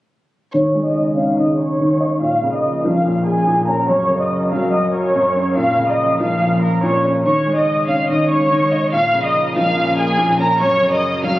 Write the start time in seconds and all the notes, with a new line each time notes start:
0.53 C#3 D#3 G#3 D#4 C#5 C#6
0.74 G#3
0.85 D#5 D#6
1.16 C#4 F5 F6
1.38 D#3 D#5 D#6
1.58 C#5 C#6
1.79 D#3
2.00 D#5
2.21 A#2 F3 C#4 A#4 F5 F6
2.42 C#3
2.52 D#5 D#6
2.85 F3 F5 F6
3.06 A#2
3.26 G#4 G#5
3.47 A#2
3.68 C#4 A#4 A#5
3.89 F#2 F#3 C#5 C#6
4.10 C#3
4.21 D#5 D#6
4.52 F#3 F5 F6
4.73 F#2 D#5 D#6
4.94 C#5 C#6
5.15 F#2
5.36 C#4
5.57 A#2 F3 F5 F6
5.78 C#3
5.88 D#5 D#6
6.20 F3 F5 F6
6.41 A#2
6.62 A#4 A#5
6.83 A#2 C#5 C#6
7.04 C#4
7.25 C#3 D#3 G#3 D#4 C#5 C#6
7.46 G#3
7.56 D#5 D#6
7.88 C#4 F5 F6
8.09 D#3 D#5 D#6
8.30 C#5 C#6
8.51 D#3
8.72 D#5
8.92 A#2 F3 C#4 A#4 F5 F6
9.14 C#3
9.24 D#5 D#6
9.56 F3 F5 F6
9.77 A#2
9.98 G#4 G#5
10.18 A#2
10.39 C#4 A#4 A#5
10.60 F#2 F#3 C#5 C#6
10.82 C#3
10.92 D#5 D#6
11.24 F#3 F5 F6